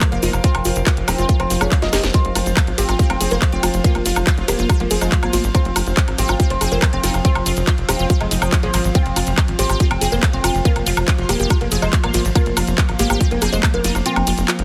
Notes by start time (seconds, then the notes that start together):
Already playing: F3 F4 A#4 C5 F5
0.01 kick, clap, closed hi-hat, cabasa, high woodblock
0.12 F1 A#3 F5, closed hi-hat
0.22 F1 D#4 F4, open hi-hat, cabasa
0.33 F1, closed hi-hat, cabasa, high woodblock
0.44 C4 F4, kick, closed hi-hat, cabasa
0.55 F1, closed hi-hat, high woodblock
0.65 F1 F4, open hi-hat, cabasa
0.75 F1, closed hi-hat, cabasa
0.86 F4, kick, clap, closed hi-hat, cabasa, high woodblock
0.97 F1, closed hi-hat
1.08 D#1 C4 D#4 G4, open hi-hat, cabasa, high woodblock
1.18 F1 C4 F4, closed hi-hat, cabasa
1.29 F4, kick, closed hi-hat, cabasa
1.40 F1 C4, closed hi-hat, high woodblock
1.50 F1 F4, open hi-hat, cabasa
1.61 F1 C#4 G#4, closed hi-hat, cabasa, high woodblock
1.72 F5, kick, clap, closed hi-hat, cabasa
1.82 F1 A#3 D#4 F4, snare, closed hi-hat
1.93 F1 A#3 G4, snare, open hi-hat, cabasa, high woodblock
2.03 F1, snare, closed hi-hat, cabasa
2.14 F3 C4 F4, kick, closed hi-hat, cabasa
2.25 F1, closed hi-hat
2.35 F1 F4, open hi-hat, ride, cabasa, high woodblock
2.46 F1, closed hi-hat, cabasa
2.57 F4, kick, clap, closed hi-hat, cabasa, high woodblock
2.67 G#1, closed hi-hat
2.78 G#1 C4 G4, open hi-hat, ride, cabasa
2.89 G#1 F4, closed hi-hat, cabasa, high woodblock
2.99 C4 F4, kick, closed hi-hat, cabasa
3.10 F1 C4, closed hi-hat, high woodblock
3.21 F1 C4 G#4, open hi-hat, ride, cabasa
3.30 F1 A#3 C5, closed hi-hat, cabasa
3.41 kick, clap, closed hi-hat, cabasa, high woodblock
3.52 F1 C4 F5, closed hi-hat
3.63 F1 F4, open hi-hat, ride, cabasa, high woodblock
3.74 F1, closed hi-hat, cabasa
3.84 A#3 F4, kick, closed hi-hat, cabasa
3.95 F1, closed hi-hat, high woodblock
4.05 F1 F4, open hi-hat, ride, cabasa
4.16 F1, closed hi-hat, cabasa, high woodblock
4.27 F4, kick, clap, closed hi-hat, cabasa
4.38 F1 F4, closed hi-hat
4.48 D#1 A#3 G4, open hi-hat, ride, cabasa, high woodblock
4.59 F1 F4, closed hi-hat, cabasa
4.69 F4, kick, closed hi-hat, cabasa, high woodblock
4.80 F1 A#3, closed hi-hat
4.90 F1 G#4, open hi-hat, ride, cabasa
5.01 F1 G#3 F4 C5, closed hi-hat, cabasa, high woodblock
5.12 kick, clap, closed hi-hat, cabasa
5.23 G#1 A#3 F5, closed hi-hat, high woodblock
5.33 G#1 F4, open hi-hat, ride, cabasa
5.44 G#1, closed hi-hat, cabasa
5.55 C4 F4, kick, closed hi-hat, cabasa, high woodblock
5.65 F1, closed hi-hat
5.76 F1 F4, open hi-hat, ride, cabasa, high woodblock
5.87 F1, closed hi-hat, cabasa
5.97 F4, kick, clap, closed hi-hat, cabasa
6.08 G#1, closed hi-hat, high woodblock
6.18 G#1 C4 G4, open hi-hat, ride, cabasa
6.28 G#1 F4, closed hi-hat, cabasa, high woodblock
6.40 C4 F4, kick, closed hi-hat, cabasa
6.50 F1 C4, closed hi-hat
6.61 F1 C4 G#4, open hi-hat, ride, cabasa, high woodblock
6.71 F1 A#3 C5, closed hi-hat, cabasa
6.81 kick, clap, closed hi-hat, cabasa, high woodblock
6.93 F1 C4 F5, closed hi-hat
7.04 F1 D#4 F4, open hi-hat, ride, cabasa
7.14 F1, closed hi-hat, cabasa, high woodblock
7.25 C4 F4, kick, closed hi-hat, cabasa
7.35 F1, closed hi-hat, high woodblock
7.46 F1 F4, open hi-hat, ride, cabasa
7.56 F1, closed hi-hat, cabasa
7.67 F4, kick, clap, closed hi-hat, cabasa, high woodblock
7.78 F1, closed hi-hat
7.89 D#1 C4 D#4 G4, open hi-hat, ride, cabasa, high woodblock
7.99 F1 C4 F4, closed hi-hat, cabasa
8.10 F4, kick, closed hi-hat, cabasa
8.21 F1 G#3, closed hi-hat, high woodblock
8.31 F1 D#4, open hi-hat, ride, cabasa
8.42 F1 F3 G5, closed hi-hat, cabasa, high woodblock
8.52 kick, clap, closed hi-hat, cabasa
8.63 G#1 F3 A#3 G#4, closed hi-hat
8.74 G#1 A#3 F4, open hi-hat, ride, cabasa, high woodblock
8.84 G#1, closed hi-hat, cabasa
8.94 C4 F4, kick, closed hi-hat, cabasa
9.06 F1, closed hi-hat
9.16 F1 F4, open hi-hat, ride, cabasa, high woodblock
9.26 F1, closed hi-hat, cabasa
9.38 F4, kick, clap, closed hi-hat, cabasa, high woodblock
9.48 G#1, closed hi-hat
9.59 G#1 C4 G4, open hi-hat, ride, cabasa
9.69 G#1 G4, closed hi-hat, cabasa, high woodblock
9.80 C4 F4, kick, closed hi-hat, cabasa
9.91 F1 C4, closed hi-hat, high woodblock
10.01 F1 C4 G#4, open hi-hat, ride, cabasa
10.12 F1 A#3 C5, closed hi-hat, cabasa
10.22 kick, clap, closed hi-hat, cabasa, high woodblock
10.33 F1 C4 F5, closed hi-hat
10.44 F1 F4, open hi-hat, ride, cabasa, high woodblock
10.55 F1, closed hi-hat, cabasa
10.65 A#3 F4, kick, closed hi-hat, cabasa
10.76 F1, closed hi-hat, high woodblock
10.86 F1 F4, open hi-hat, ride, cabasa
10.97 F1, closed hi-hat, cabasa, high woodblock
11.07 F4, kick, clap, closed hi-hat, cabasa
11.18 F1 F4, closed hi-hat
11.29 D#1 A#3 G4, open hi-hat, ride, cabasa, high woodblock
11.39 F1 G4, closed hi-hat, cabasa
11.50 F4, kick, closed hi-hat, cabasa, high woodblock
11.61 F1 A#3, closed hi-hat
11.71 F1 G#4, open hi-hat, ride, cabasa
11.82 F1 G#3 F4 C5, closed hi-hat, cabasa, high woodblock
11.93 kick, clap, closed hi-hat, cabasa
12.04 G#1 A#3 F5, closed hi-hat, high woodblock
12.14 G#1 F4, open hi-hat, ride, cabasa
12.25 G#1, closed hi-hat, cabasa
12.35 A#3 F4, kick, closed hi-hat, cabasa, high woodblock
12.46 F1, closed hi-hat
12.57 F1 F4, open hi-hat, ride, cabasa, high woodblock
12.67 F1, closed hi-hat, cabasa
12.78 F4, kick, clap, closed hi-hat, cabasa
12.89 G#1, closed hi-hat, high woodblock
12.99 G#1 A#3 G4, open hi-hat, ride, cabasa
13.10 G#1 G4, closed hi-hat, cabasa, high woodblock
13.20 C4 F4, kick, closed hi-hat, cabasa
13.31 F1 A#3, closed hi-hat
13.41 F1 C4 G#4, open hi-hat, ride, cabasa, high woodblock
13.52 F1 G#3 C5, closed hi-hat, cabasa
13.63 kick, clap, closed hi-hat, cabasa, high woodblock
13.74 F1 A#3 F5, closed hi-hat
13.84 F1 D#4 F4, open hi-hat, ride, cabasa
13.95 F1, closed hi-hat, cabasa, high woodblock
14.06 C4 F4, closed hi-hat, cabasa
14.16 F1, closed hi-hat, high woodblock
14.27 F1 F4, open hi-hat, ride, cabasa
14.38 F1, closed hi-hat, cabasa
14.48 F4, clap, closed hi-hat, cabasa, high woodblock
14.59 F1, closed hi-hat